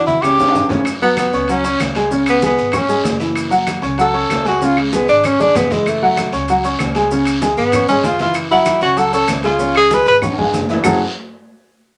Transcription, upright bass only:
0.07 0.37 C#2 medium
0.39 0.54 E2 medium
0.55 1.28 F#2 medium
1.33 1.76 C#2 medium
1.80 2.53 C#2 medium
2.58 3.02 G#1 medium
3.04 3.77 F#1 medium
3.83 4.27 C#2 loud
4.30 5.02 C#2 medium
5.08 5.37 G#1 medium
5.40 5.54 G#1 medium
5.55 6.27 F#1 medium
6.32 6.76 C#2 medium
6.80 7.52 C#2 medium
7.56 7.86 G#1 medium
7.88 8.03 G#1 medium
8.04 8.76 F#1 medium
8.81 9.25 C#2 loud
9.28 10.01 C#2 medium
10.06 10.35 G#1 loud
10.38 10.52 G#1 medium
10.53 10.81 F#1 medium
10.85 10.99 F#1 medium

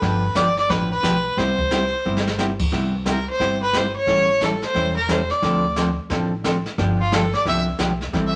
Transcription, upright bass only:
0.02 0.29 G1 loud
0.36 0.64 G1 medium
0.69 0.98 A1 medium
1.03 1.32 B1 medium
1.37 1.91 C2 medium
2.06 2.60 G1 medium
2.72 3.26 C2 loud
3.40 3.94 G1 medium
4.07 4.62 A1 loud
4.75 5.29 E1 medium
5.42 5.97 D2 loud
6.10 6.65 A1 medium
6.78 7.32 G1 loud
7.45 7.74 C2 medium
7.79 8.08 B1 medium
8.13 8.36 A1 loud

